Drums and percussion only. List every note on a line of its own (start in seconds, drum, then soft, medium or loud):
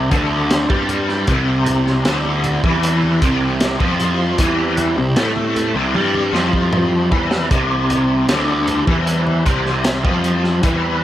0.11 kick loud
0.11 closed hi-hat medium
0.50 snare loud
0.50 closed hi-hat medium
0.70 kick loud
0.89 closed hi-hat medium
0.89 low conga medium
1.09 snare soft
1.27 kick loud
1.27 closed hi-hat medium
1.66 closed hi-hat medium
1.66 high conga medium
1.66 low conga medium
1.86 snare soft
2.05 snare loud
2.05 closed hi-hat medium
2.25 high conga medium
2.44 closed hi-hat medium
2.44 low conga medium
2.64 kick loud
2.83 closed hi-hat medium
3.02 high conga medium
3.22 kick medium
3.22 closed hi-hat medium
3.60 snare loud
3.60 closed hi-hat loud
3.80 kick loud
4.00 closed hi-hat medium
4.00 low conga medium
4.38 kick medium
4.38 closed hi-hat loud
4.77 closed hi-hat medium
4.77 high conga medium
4.77 low conga medium
5.16 snare loud
5.16 closed hi-hat medium
5.36 high conga medium
5.55 closed hi-hat medium
5.55 low conga medium
5.95 high tom medium
6.14 high conga medium
6.35 snare medium
6.53 kick medium
6.73 mid tom medium
7.12 kick medium
7.12 low conga medium
7.31 snare medium
7.51 kick loud
7.51 closed hi-hat medium
7.90 closed hi-hat medium
7.90 high conga medium
7.90 low conga medium
8.29 snare loud
8.29 closed hi-hat medium
8.49 high conga medium
8.67 closed hi-hat medium
8.67 low conga medium
8.88 kick loud
9.07 closed hi-hat medium
9.27 high conga medium
9.46 kick medium
9.46 closed hi-hat medium
9.66 snare soft
9.84 snare loud
9.84 closed hi-hat medium
10.05 kick loud
10.24 closed hi-hat medium
10.44 snare soft
10.63 kick loud
10.63 closed hi-hat medium